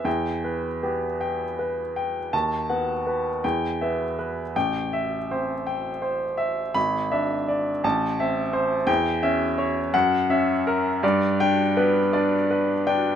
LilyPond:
<<
  \new Staff \with { instrumentName = "Grand piano" } { \time 6/8 \key e \minor \tempo 4. = 55 << { g''4 r2 | a''4 r8 g''4 r8 | g''4 r2 | b''4 r8 a''4 r8 |
\key g \lydian g''4 r8 fis''4 r8 | r8 g''4 r4. | } \\ { r8 b'8 g'8 g''8 b'8 g''8 | r8 fis''8 b'8 r8 e''8 b'8 | r8 e''8 c''8 g''8 c''8 e''8 | r8 e''8 d''8 r8 e''8 c''8 |
r8 e''8 cis''8 r8 e''8 ais'8 | d''4 b'8 d''8 b'8 g''8 | } >> }
  \new Staff \with { instrumentName = "Grand piano" } { \time 6/8 \key e \minor e,4 b4 r4 | dis,8 b4 e,8 b4 | a,,4 c'4 r4 | gis,,8 d'4 a,,8 c'4 |
\key g \lydian e,8 cis'4 fis,8 cis'4 | g,8 d'8 b8 d'4 d'8 | }
>>